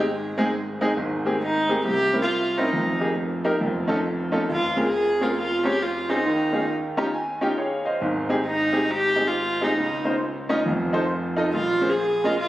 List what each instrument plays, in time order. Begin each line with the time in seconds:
Already playing: grand piano G#1 G#2, viola G#4
0.38 grand piano G#3 C4 D#4 G#4
0.81 grand piano G#3 C4 D#4 G#4
0.97 grand piano G#1 G#2
1.25 grand piano A#3 C4 G4 G#4
1.42 viola D#4
1.69 grand piano A#3 C4 G4 G#4
1.85 grand piano C2 C3, viola G4
2.13 grand piano C4 C#4 E4 A#4
2.22 viola F4
2.58 grand piano C4 C#4 E4 A#4, viola D#4
2.73 grand piano F1 F2
3.00 grand piano A#3 D#4 G4 G#4
3.44 grand piano A#3 D#4 G4 A#4
3.61 grand piano F1 F2
3.88 grand piano C#4 D#4 F4 A4
4.32 grand piano C#4 D#4 F4 A4
4.49 grand piano F1 F2, viola F4
4.77 grand piano C4 C#4 G#4 A#4
4.86 viola G#4
5.21 grand piano C4 C#4 G#4 A#4, viola F4
5.38 viola F4
5.64 grand piano C4 C#4 G#4 C#5, viola G4
5.83 viola F4
6.09 grand piano C4 C#4 G#4 C5, viola D#4
6.26 grand piano D#2 D#3
6.52 grand piano C#4 D#4 F4 G#4
6.97 grand piano C#4 D#4 F4 G4 A#5
7.14 grand piano G#5
7.41 grand piano C#4 D#4 F4 G4 G5
7.58 grand piano G#4 C#5 F5
7.85 grand piano C5 D#5 F5
8.01 grand piano G#1 G#2
8.29 grand piano C4 D#4 G4 G#4
8.46 viola D#4
8.73 grand piano C4 D#4 G4 G#4
8.91 viola G4
9.16 grand piano C4 D#4 G4 G#4
9.27 viola F4
9.61 grand piano C4 D#4 G4 G#4, viola D#4
9.77 grand piano C#2 C#3
10.04 grand piano C#4 D#4 F4 C5
10.49 grand piano C#4 D#4 F4 D#5
10.66 grand piano F1 F2
10.93 grand piano D#4 F4 A4 C5
11.37 grand piano D#4 F4 A4 D#5
11.53 grand piano A#1 A#2, viola F4
11.81 grand piano C#4 G#4 A#4 C5
11.89 viola G#4
12.24 grand piano C#4 G#4 A#4 D#5, viola F4
12.40 viola F4